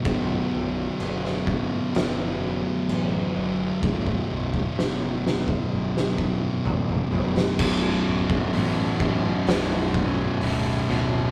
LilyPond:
<<
  \new Staff \with { instrumentName = "Synth drone" } { \clef bass \time 4/4 \key b \minor \tempo 4 = 64 <d e b>1~ | <d e b>1 | <d fis b>1 | }
  \new Staff \with { instrumentName = "Distorted electric guitar" } { \clef bass \time 4/4 \key b \minor <b,, fis, b,>1 | <b,, fis, b,>1 | <b,, fis, b,>1 | }
  \new Staff \with { instrumentName = "Distorted electric guitar" } { \clef bass \time 4/4 \key b \minor <b,, fis, b,>2.~ <b,, fis, b,>8 <b,, fis, b,>8 | <b,, fis, b,>2.~ <b,, fis, b,>8 <b,, fis, b,>8 | <b,, fis, b,>1 | }
  \new Staff \with { instrumentName = "Overdriven electric guitar" } { \clef bass \time 4/4 \key b \minor r1 | r1 | <b,, fis, b,>4 <b,, fis, b,>8 <b,, fis, b,>8 <b,, fis, b,>4 <b,, fis, b,>8 <b,, fis, b,>8 | }
  \new Staff \with { instrumentName = "Fingered electric bass" } { \clef bass \time 4/4 \key b \minor b,,,8 b,,,8 fis,,4 fis,,4 a,,8 fis,,8 | b,,,8 b,,,8 fis,,4 fis,,4 a,,8 fis,,8 | b,,,8 d,,8 a,,4 b,,,4 d,,8 d,,8 | }
  \new DrumStaff \with { instrumentName = "Drums" } \drummode { \time 4/4 <cymc bd>4 cymc16 sn16 bd8 <cymc sn>4 cymc4 | <bd tommh>16 bd8 bd16 sn8 sn16 bd16 r16 sn16 bd8 tomfh16 tomfh16 tomfh16 sn16 | <cymc bd>8. bd16 hho8 bd8 <hho sn>8 bd8 hho8 sn8 | }
>>